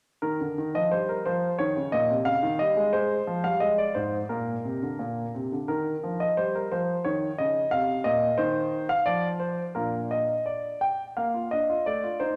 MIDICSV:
0, 0, Header, 1, 2, 480
1, 0, Start_track
1, 0, Key_signature, -3, "major"
1, 0, Tempo, 677966
1, 162, Time_signature, 2, 2, 24, 8
1, 2559, Tempo, 691244
1, 4479, Tempo, 671892
1, 5914, Key_signature, -2, "major"
1, 6399, Tempo, 695249
1, 8674, End_track
2, 0, Start_track
2, 0, Title_t, "Grand piano"
2, 0, Program_c, 0, 0
2, 156, Note_on_c, 0, 70, 53
2, 158, Note_on_c, 0, 51, 41
2, 276, Note_off_c, 0, 51, 0
2, 288, Note_on_c, 0, 50, 38
2, 402, Note_off_c, 0, 50, 0
2, 411, Note_on_c, 0, 51, 37
2, 496, Note_off_c, 0, 70, 0
2, 524, Note_off_c, 0, 51, 0
2, 528, Note_on_c, 0, 53, 42
2, 531, Note_on_c, 0, 75, 59
2, 643, Note_off_c, 0, 53, 0
2, 648, Note_on_c, 0, 72, 62
2, 651, Note_off_c, 0, 75, 0
2, 651, Note_on_c, 0, 55, 42
2, 770, Note_off_c, 0, 72, 0
2, 772, Note_on_c, 0, 70, 46
2, 825, Note_off_c, 0, 55, 0
2, 889, Note_on_c, 0, 72, 59
2, 893, Note_off_c, 0, 70, 0
2, 894, Note_on_c, 0, 53, 44
2, 1068, Note_off_c, 0, 53, 0
2, 1123, Note_on_c, 0, 73, 66
2, 1131, Note_on_c, 0, 51, 49
2, 1133, Note_off_c, 0, 72, 0
2, 1247, Note_off_c, 0, 51, 0
2, 1250, Note_on_c, 0, 49, 45
2, 1361, Note_on_c, 0, 75, 68
2, 1366, Note_off_c, 0, 49, 0
2, 1368, Note_off_c, 0, 73, 0
2, 1368, Note_on_c, 0, 46, 48
2, 1484, Note_off_c, 0, 46, 0
2, 1485, Note_on_c, 0, 48, 51
2, 1508, Note_off_c, 0, 75, 0
2, 1594, Note_on_c, 0, 77, 73
2, 1599, Note_on_c, 0, 49, 49
2, 1602, Note_off_c, 0, 48, 0
2, 1717, Note_off_c, 0, 49, 0
2, 1719, Note_on_c, 0, 51, 51
2, 1835, Note_on_c, 0, 75, 71
2, 1836, Note_off_c, 0, 51, 0
2, 1839, Note_off_c, 0, 77, 0
2, 1841, Note_on_c, 0, 55, 49
2, 1956, Note_off_c, 0, 55, 0
2, 1958, Note_on_c, 0, 56, 53
2, 2069, Note_off_c, 0, 56, 0
2, 2073, Note_on_c, 0, 72, 69
2, 2077, Note_off_c, 0, 75, 0
2, 2079, Note_on_c, 0, 56, 55
2, 2251, Note_off_c, 0, 56, 0
2, 2317, Note_on_c, 0, 53, 47
2, 2432, Note_off_c, 0, 53, 0
2, 2434, Note_off_c, 0, 72, 0
2, 2435, Note_on_c, 0, 77, 70
2, 2436, Note_on_c, 0, 55, 49
2, 2551, Note_off_c, 0, 55, 0
2, 2551, Note_on_c, 0, 75, 63
2, 2557, Note_off_c, 0, 77, 0
2, 2558, Note_on_c, 0, 56, 46
2, 2674, Note_off_c, 0, 75, 0
2, 2675, Note_on_c, 0, 74, 59
2, 2729, Note_off_c, 0, 56, 0
2, 2789, Note_on_c, 0, 72, 57
2, 2795, Note_on_c, 0, 44, 41
2, 2796, Note_off_c, 0, 74, 0
2, 2936, Note_off_c, 0, 72, 0
2, 2969, Note_off_c, 0, 44, 0
2, 3030, Note_on_c, 0, 70, 47
2, 3035, Note_on_c, 0, 46, 39
2, 3210, Note_off_c, 0, 46, 0
2, 3275, Note_on_c, 0, 48, 37
2, 3392, Note_off_c, 0, 48, 0
2, 3400, Note_on_c, 0, 50, 38
2, 3515, Note_off_c, 0, 50, 0
2, 3515, Note_on_c, 0, 46, 36
2, 3692, Note_off_c, 0, 46, 0
2, 3733, Note_off_c, 0, 70, 0
2, 3762, Note_on_c, 0, 48, 37
2, 3878, Note_off_c, 0, 48, 0
2, 3883, Note_on_c, 0, 50, 37
2, 3994, Note_on_c, 0, 70, 52
2, 3998, Note_off_c, 0, 50, 0
2, 3999, Note_on_c, 0, 51, 42
2, 4173, Note_off_c, 0, 51, 0
2, 4239, Note_on_c, 0, 53, 39
2, 4355, Note_on_c, 0, 75, 55
2, 4357, Note_off_c, 0, 70, 0
2, 4411, Note_off_c, 0, 53, 0
2, 4474, Note_on_c, 0, 72, 60
2, 4477, Note_off_c, 0, 75, 0
2, 4479, Note_on_c, 0, 55, 43
2, 4598, Note_off_c, 0, 72, 0
2, 4603, Note_on_c, 0, 70, 43
2, 4653, Note_off_c, 0, 55, 0
2, 4719, Note_on_c, 0, 72, 58
2, 4722, Note_off_c, 0, 70, 0
2, 4723, Note_on_c, 0, 53, 40
2, 4896, Note_off_c, 0, 53, 0
2, 4954, Note_on_c, 0, 73, 60
2, 4961, Note_off_c, 0, 72, 0
2, 4961, Note_on_c, 0, 51, 46
2, 5134, Note_off_c, 0, 51, 0
2, 5197, Note_on_c, 0, 75, 65
2, 5198, Note_off_c, 0, 73, 0
2, 5204, Note_on_c, 0, 49, 45
2, 5374, Note_off_c, 0, 49, 0
2, 5431, Note_on_c, 0, 77, 71
2, 5436, Note_off_c, 0, 75, 0
2, 5438, Note_on_c, 0, 48, 47
2, 5608, Note_off_c, 0, 48, 0
2, 5667, Note_on_c, 0, 75, 72
2, 5671, Note_off_c, 0, 77, 0
2, 5674, Note_on_c, 0, 46, 48
2, 5846, Note_off_c, 0, 46, 0
2, 5905, Note_on_c, 0, 72, 75
2, 5910, Note_off_c, 0, 75, 0
2, 5912, Note_on_c, 0, 51, 54
2, 6245, Note_off_c, 0, 72, 0
2, 6263, Note_off_c, 0, 51, 0
2, 6274, Note_on_c, 0, 77, 77
2, 6392, Note_on_c, 0, 74, 73
2, 6398, Note_off_c, 0, 77, 0
2, 6398, Note_on_c, 0, 53, 52
2, 6537, Note_off_c, 0, 74, 0
2, 6626, Note_on_c, 0, 72, 52
2, 6744, Note_off_c, 0, 53, 0
2, 6775, Note_off_c, 0, 72, 0
2, 6869, Note_on_c, 0, 70, 49
2, 6874, Note_on_c, 0, 46, 36
2, 6875, Note_on_c, 0, 62, 30
2, 6876, Note_on_c, 0, 65, 29
2, 7093, Note_off_c, 0, 70, 0
2, 7118, Note_on_c, 0, 75, 51
2, 7217, Note_off_c, 0, 46, 0
2, 7266, Note_off_c, 0, 62, 0
2, 7267, Note_off_c, 0, 65, 0
2, 7339, Note_off_c, 0, 75, 0
2, 7359, Note_on_c, 0, 74, 44
2, 7582, Note_off_c, 0, 74, 0
2, 7603, Note_on_c, 0, 79, 54
2, 7750, Note_off_c, 0, 79, 0
2, 7848, Note_on_c, 0, 77, 50
2, 7853, Note_on_c, 0, 58, 40
2, 7967, Note_off_c, 0, 58, 0
2, 7970, Note_on_c, 0, 65, 29
2, 8087, Note_off_c, 0, 77, 0
2, 8087, Note_on_c, 0, 75, 58
2, 8092, Note_on_c, 0, 62, 33
2, 8094, Note_off_c, 0, 65, 0
2, 8213, Note_on_c, 0, 65, 34
2, 8215, Note_off_c, 0, 62, 0
2, 8324, Note_off_c, 0, 75, 0
2, 8328, Note_off_c, 0, 65, 0
2, 8329, Note_on_c, 0, 74, 58
2, 8334, Note_on_c, 0, 57, 43
2, 8444, Note_off_c, 0, 57, 0
2, 8448, Note_on_c, 0, 65, 32
2, 8561, Note_on_c, 0, 72, 59
2, 8563, Note_off_c, 0, 74, 0
2, 8567, Note_on_c, 0, 63, 33
2, 8569, Note_off_c, 0, 65, 0
2, 8674, Note_off_c, 0, 63, 0
2, 8674, Note_off_c, 0, 72, 0
2, 8674, End_track
0, 0, End_of_file